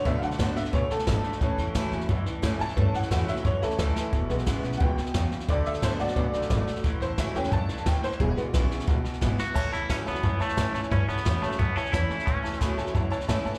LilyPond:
<<
  \new Staff \with { instrumentName = "Honky-tonk piano" } { \time 4/4 \key a \major \tempo 4 = 177 << { e''8 <f'' fis''>4 e''8 cis''8 a'4.~ | a'4. r2 <gis'' a''>8~ | <gis'' a''>8 fis''8 fis''8 e''8 cis''8 a'4. | r2 <fis'' g''>2 |
d''8 e''8 c''8 d''2 r8 | r8 c''8 e''8 g''8 <gis'' a''>4 g''8 c''8 | gis'8 r2. r8 | <cis'' e'' a''>8 <cis'' e'' a''>8 <cis'' e'' a''>8 <cis'' e'' a''>8 <cis'' e'' a''>8 <cis'' e'' a''>8 <cis'' e'' a''>8 <cis'' e'' a''>8 |
<cis'' e'' b''>8 <cis'' e'' a''>8 <cis'' e'' b''>8 <cis'' e'' a''>8 <cis'' e'' a''>8 <cis'' e'' a''>8 <cis'' e'' a''>8 <cis'' e'' a''>8 | <cis'' e'' a''>8 <cis'' e'' a''>8 <cis'' e'' a''>8 <cis'' e'' a''>8 <cis'' e'' a''>8 <cis'' e'' a''>8 <cis'' e'' a''>8 <cis'' e'' a''>8 | } \\ { r1 | r1 | r2 r8 e'4.~ | e'4. r2 r8 |
r1 | r1 | r1 | r1 |
r1 | r1 | } >> }
  \new Staff \with { instrumentName = "Honky-tonk piano" } { \time 4/4 \key a \major <fis a d'>8 r2. r8 | <e a cis'>4. r2 r8 | <e a cis'>4. r4 <e a cis'>8 r4 | r8 <e gis b>4. <e gis b>8 r4. |
r4. <fis a fis'>2~ <fis a fis'>8 | r4. <e a cis'>8 r2 | r8 <e gis b>8 r2. | r1 |
r1 | r1 | }
  \new Staff \with { instrumentName = "Clean electric guitar" } { \time 4/4 \key a \major r1 | r1 | r1 | r1 |
r1 | r1 | r2. r8 fis'8~ | fis'8 e'8 cis'8 b4 a4 a8 |
cis'8 b4 a8 b8 cis'8 e'4 | cis'4. r2 r8 | }
  \new Staff \with { instrumentName = "Steel-string acoustic guitar" } { \time 4/4 \key a \major << { r4 <d a d' fis'>8 <d' fis'>8 r2 | r4 <e a cis' e'>4 r4 <e a cis' e'>8 <cis' e'>8 | r4 <e a cis' e'>8 <cis' e'>8 r4 <e a cis' e'>4 | r4 <e gis b e'>8 <b e'>8 r2 |
r4 <d a d' fis'>8 <d' fis'>8 r2 | r4 <e a cis' e'>8 <cis' e'>8 r2 | r4 <e gis b e'>8 <b e'>8 r4 <e gis b e'>8 <b e'>8 | r4 <e a cis' e'>8 <cis' e'>8 r4 <e a cis' e'>8 <cis' e'>8 |
r4 <e a cis' e'>8 <cis' e'>8 r4 <e a cis' e'>4 | r4 <e a cis' e'>4 r4 <e a cis' e'>8 <cis' e'>8 | } \\ { d2 cis4 g,4 | a,2 e,2 | a,2 e,2 | e,2 b,4 cis4 |
d2 cis4 b,4 | a,2 g,4 fis,4 | e,2 b,2 | a,2 e,2 |
a,2 e,2 | a,2 e,2 | } >> }
  \new Staff \with { instrumentName = "Clean electric guitar" } { \clef bass \time 4/4 \key a \major <d a>8 <d a>8 <d b>8 <d b>8 <d a>8 <d a>8 <d a>8 <d a>8 | <a, e>8 <a, e>8 <a, fis>8 <a, fis>8 <a, e>8 <a, e>8 <a, e>8 <a, e>8 | <a, e>8 <a, e>8 <a, fis>8 <a, fis>8 <a, e>8 <a, e>8 <a, e>8 <a, e>8 | <e, b,>8 <e, b,>8 <e, cis>8 <e, cis>8 <e, b,>8 <e, b,>8 <e, b,>8 <e, b,>8 |
<d a>8 <d a>8 <d b>8 <d b>8 <d a>8 <d a>8 <d a>8 <d a>8 | <a, e>8 <a, e>8 <a, fis>8 <a, fis>8 <a, e>8 <a, e>8 <a, e>8 <a, e>8 | <e, b,>8 <e, b,>8 <e, cis>8 <e, cis>8 <e, b,>8 <e, b,>8 <e, b,>8 <e, b,>8 | <a, e>8 <a, e>8 <a, fis>8 <a, fis>8 <a, e>8 <a, e>8 <a, e>8 <a, e>8 |
<a, e>8 <a, e>8 <a, fis>8 <a, fis>8 <a, e>8 <a, e>8 <a, e>8 <a, e>8 | <a, e>8 <a, e>8 <a, fis>8 <a, fis>8 <a, e>8 <a, e>8 <a, e>8 <a, e>8 | }
  \new Staff \with { instrumentName = "Upright bass" } { \clef bass \time 4/4 \key a \major b,8 r8 a,8 r8 b,8 r8 gis,,8 r8 | a,,8 e,8 d,8 e,8 fis,8 r8 a,8 r8 | g,8 r8 e,8 r8 fis,8 r8 d,8 r8 | e,,8 b,,8 a,,8 b,,8 cis,8 r8 e,8 r8 |
d,8 r8 a,8 r8 b,8 r8 gis,,8 r8 | a,,8 e,8 d,8 e,8 fis,8 r8 dis,8 r8 | e,,8 r8 b,,8 r8 cis,8 r8 gis,,8 r8 | a,,8 e,8 d,8 e,8 fis,8 r8 a,8 r8 |
g,8 r8 e,8 r8 fis,8 r8 e,8 r8 | a,,8 e,8 d,8 e,8 fis,8 r8 a,8 r8 | }
  \new DrumStaff \with { instrumentName = "Drums" } \drummode { \time 4/4 <bd sn>8 sn16 sn16 <hhp bd sn>8 sn16 sn16 <bd sn>8 sn16 sn16 <hhp bd sn>8 sn16 sn16 | <bd sn>8 sn8 <hhp bd sn>8 sn16 sn16 <bd sn>8 sn8 <hhp bd sn>8 sn16 sn16 | <bd sn>8 sn16 sn16 <hhp bd sn>8 sn16 sn16 <bd sn>8 sn16 sn16 <hhp bd sn>8 sn8 | <bd sn>8 sn16 sn16 <hhp bd sn>8 sn16 sn16 bd8 sn16 sn16 <hhp bd sn>8 sn16 sn16 |
<bd sn>8 sn16 sn16 <hhp bd sn>8 sn16 sn16 <bd sn>8 sn16 sn16 <hhp bd sn>8 sn16 sn16 | <bd sn>8 sn8 <hhp bd sn>8 sn16 sn16 <bd sn>8 sn16 sn16 <hhp bd sn>8 sn16 sn16 | <bd sn>8 sn8 <hhp bd sn>8 sn16 sn16 <bd sn>8 sn16 sn16 <hhp bd sn>8 sn8 | <cymc bd sn>8 sn8 <hhp bd sn>8 sn16 sn16 <bd sn>8 sn16 sn16 <hhp bd sn>8 sn16 sn16 |
<bd sn>8 sn16 sn16 <hhp bd sn>8 sn16 sn16 <bd sn>8 sn16 sn16 <hhp bd sn>8 sn16 sn16 | <bd sn>8 sn16 sn16 <hhp bd sn>8 sn16 sn16 <bd sn>8 sn16 sn16 <hhp bd sn>8 sn16 sn16 | }
>>